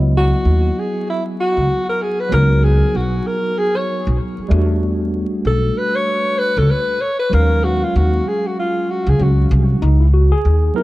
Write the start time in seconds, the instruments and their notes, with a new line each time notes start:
Already playing: upright bass C#2, tine electric piano F#3 B3 E4 D#5
0.17 alto saxophone F#4
0.45 upright bass D#2
0.79 alto saxophone G#4
1.10 alto saxophone E4
1.40 alto saxophone F#4
1.57 upright bass C#2
1.89 alto saxophone A#4
2.02 alto saxophone G#4
2.20 alto saxophone B4
2.29 upright bass C#2, tine electric piano F#3 B3 D#4, alto saxophone A#4
2.34 tine electric piano F#4
2.64 alto saxophone G#4
2.95 upright bass B1, alto saxophone F#4
3.27 alto saxophone A#4
3.58 alto saxophone G#4
3.76 alto saxophone C#5
4.07 upright bass B1
4.38 muted upright bass stroke
4.48 upright bass E2, tine electric piano G3 A3 D4
4.53 tine electric piano F#4
5.45 upright bass B1, alto saxophone A4
5.78 alto saxophone B4
5.96 alto saxophone C#5
6.39 alto saxophone B4
6.57 upright bass C#2, alto saxophone A4
6.70 alto saxophone B4
7.01 alto saxophone C#5
7.19 alto saxophone B4
7.30 upright bass D#2, tine electric piano F#3 G#3 C#4, alto saxophone A#4
7.35 tine electric piano F5
7.64 alto saxophone F#4
7.83 alto saxophone F4
7.96 upright bass D#2, alto saxophone F#4
8.28 alto saxophone G#4
8.46 alto saxophone F#4
8.59 alto saxophone F4
8.91 alto saxophone F#4
9.07 upright bass C#2, alto saxophone G#4
9.18 upright bass C#2, tine electric piano F#3 G#3 C#4 F#4, alto saxophone F#4
9.51 upright bass C2
9.82 upright bass C#2, tine electric piano D#4
10.00 tine electric piano E4
10.14 tine electric piano F#4
10.32 tine electric piano G#4
10.45 upright bass D#2
10.74 tine electric piano F#3 B3 D#4 E4 A#4